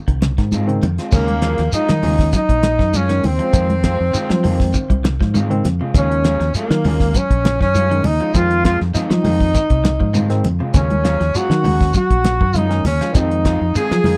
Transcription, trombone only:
1.14 1.70 A#3 loud
1.76 2.31 D#4 loud
2.36 2.98 D#4 loud
2.96 3.27 C#4 loud
3.25 5.05 C4 medium
5.97 6.52 C#4 loud
6.57 7.19 A#3 medium
7.18 7.61 C#4 loud
7.62 8.08 C#4 loud
8.06 8.37 D#4 loud
8.36 8.65 F4 loud
8.66 8.79 F4 loud
8.95 10.41 D#4 medium
10.77 11.38 C#4 loud
11.37 11.96 F#4 medium
11.96 12.59 F#4 loud
12.57 12.86 D#4 loud
12.88 13.18 C#4 medium
13.17 13.76 D#4 medium
13.77 14.17 G#4 medium

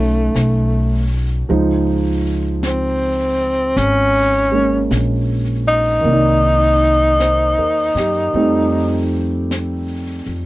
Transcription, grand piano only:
0.00 1.48 F#3 soft
0.00 1.49 A3 soft
0.00 1.50 C#4 soft
0.00 1.49 D#4 soft
1.49 6.06 F3 soft
1.49 4.50 G#3 soft
1.49 6.06 D#4 medium
1.49 6.06 C5 soft
4.52 6.05 G#3 soft
4.52 6.03 A#3 soft
4.52 6.07 C#4 soft
6.01 8.33 D#3 medium
6.01 8.34 A#3 soft
6.08 8.34 D#4 medium
6.08 8.36 D5 soft
7.21 7.92 C5 soft
7.58 8.18 A#4 soft
7.96 8.56 G4 soft
8.34 10.46 G3 soft
8.34 10.46 A3 soft
8.34 10.46 C4 soft
8.34 10.46 D#4 soft

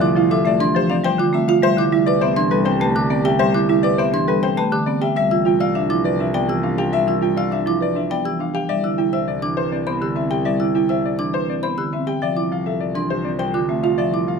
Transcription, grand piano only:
0.17 0.35 F5 medium
0.31 0.50 E5 medium
0.47 0.65 D5 medium
0.76 0.94 C5 loud
0.91 1.09 D5 medium
1.05 1.24 C5 medium
1.34 1.53 E5 medium
1.48 1.67 F5 medium
1.63 1.82 C5 loud
1.92 2.11 E5 medium
2.06 2.26 D5 loud
2.21 2.41 C5 medium
2.51 2.70 B4 loud
2.65 2.85 C5 medium
2.80 3.00 B4 medium
3.10 3.29 D5 medium
3.25 3.44 E5 medium
3.39 3.59 C5 loud
3.69 3.88 E5 medium
3.83 4.03 D5 loud
3.98 4.17 C5 medium
4.28 4.47 B4 loud
4.43 4.62 C5 medium
4.57 4.76 B4 medium
4.86 5.06 D5 medium
5.02 5.15 E5 medium
5.16 5.35 E5 loud
5.46 5.65 G5 medium
5.61 5.79 F5 medium
5.75 5.94 E5 medium
6.05 6.24 D5 loud
6.20 6.38 E5 medium
6.35 6.53 D5 medium
6.63 6.82 F5 medium
6.78 6.97 G5 medium
6.93 7.12 E5 loud
7.22 7.41 G5 medium
7.37 7.56 F5 medium
7.53 7.71 E5 medium
7.82 8.00 D5 medium
7.96 8.15 E5 medium
8.11 8.30 D5 medium
8.41 8.59 F5 medium
8.55 8.73 G5 medium
8.69 8.88 D5 medium
8.98 9.17 G5 medium
9.13 9.32 E5 medium
9.28 9.47 D5 medium
9.57 9.76 C5 medium
9.72 9.91 D5 medium
9.87 10.06 C5 medium
10.16 10.35 E5 medium
10.31 10.50 G5 medium
10.46 10.65 D5 medium
10.75 10.94 G5 medium
10.90 11.09 E5 medium
11.05 11.24 D5 medium
11.34 11.53 C5 medium
11.49 11.68 D5 medium
11.63 11.82 C5 medium
11.93 12.12 E5 medium
12.07 12.26 G5 medium
12.23 12.41 D5 medium
12.52 12.71 F5 medium
12.66 12.85 E5 medium
12.81 13.00 D5 medium
13.10 13.29 C5 medium
13.25 13.44 D5 medium
13.39 13.58 C5 medium
13.69 13.88 E5 medium
13.83 14.03 F5 medium
13.98 14.17 D5 medium
14.28 14.39 F5 medium

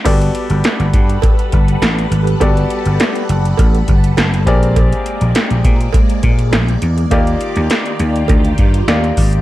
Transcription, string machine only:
0.05 4.43 G3 medium
0.05 4.43 A4 medium
0.05 4.43 B4 loud
0.05 4.43 F#5 medium
4.47 7.09 G#3 medium
4.47 7.09 A#3 medium
4.47 9.41 D5 loud
7.11 9.41 D#3 medium
7.11 9.41 F4 medium
7.11 9.41 G4 loud

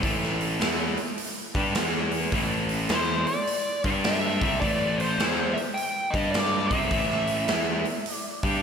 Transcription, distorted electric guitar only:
0.03 0.60 A2 medium
0.03 0.59 E3 medium
0.03 0.61 A3 loud
0.60 0.96 E3 medium
0.60 0.97 B3 medium
0.60 0.97 E4 medium
1.55 1.76 G3 medium
1.55 1.76 D4 loud
1.55 1.75 G4 loud
1.75 2.32 E3 medium
1.75 2.32 B3 medium
1.75 2.32 E4 loud
2.33 2.90 A2 medium
2.33 2.90 E3 medium
2.33 2.90 A3 loud
2.91 3.27 E3 medium
2.91 3.27 B3 medium
2.91 3.27 E4 medium
3.85 4.41 G3 medium
3.85 4.41 D4 medium
3.85 4.42 G4 loud
4.43 4.62 C3 medium
4.43 4.62 G3 medium
4.43 4.62 C4 medium
4.63 5.19 A2 medium
4.63 5.18 E3 medium
4.63 5.20 A3 loud
5.19 5.55 E3 medium
5.19 5.56 B3 medium
5.19 5.56 E4 loud
6.15 6.71 G3 loud
6.15 6.71 D4 loud
6.15 6.71 G4 loud
6.72 6.91 C3 medium
6.72 6.91 G3 medium
6.72 6.92 C4 medium
6.92 7.48 A2 loud
6.92 7.47 E3 loud
6.92 7.49 A3 loud
7.48 7.85 E3 loud
7.48 7.85 B3 medium
7.48 7.86 E4 loud
8.44 8.62 G3 loud
8.44 8.62 D4 loud
8.44 8.62 G4 loud

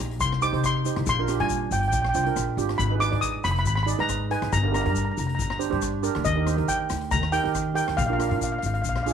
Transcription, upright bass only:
0.00 0.21 A#1 medium
0.21 0.46 C2 loud
0.53 0.87 C3 medium
0.97 1.04 C2 loud
1.07 1.41 A#1 loud
1.40 1.65 A#2 medium
1.71 1.93 G1 loud
1.93 2.10 A#1 loud
2.15 2.34 C2 medium
2.36 2.55 A#1 medium
2.57 2.77 G#1 medium
2.79 3.14 G#1 loud
3.12 3.37 G#2 loud
3.45 3.66 F1 loud
3.66 3.92 G#1 loud
3.99 4.33 G#2 medium
4.42 4.50 G#1 loud
4.53 4.87 G1 loud
4.85 5.10 G2 loud
5.18 5.39 F1 medium
5.39 5.65 G1 loud
5.72 6.06 G2 loud
6.16 6.24 D2 loud
6.25 6.60 D#2 loud
6.58 6.83 D#3 medium
6.90 7.13 D2 medium
7.11 7.37 D#2 loud
7.45 7.79 D#3 medium
7.88 7.96 D#2 loud
7.98 8.33 A#1 loud
8.31 8.56 A#2 medium
8.63 8.85 G#1 medium
8.85 9.11 A#1 loud

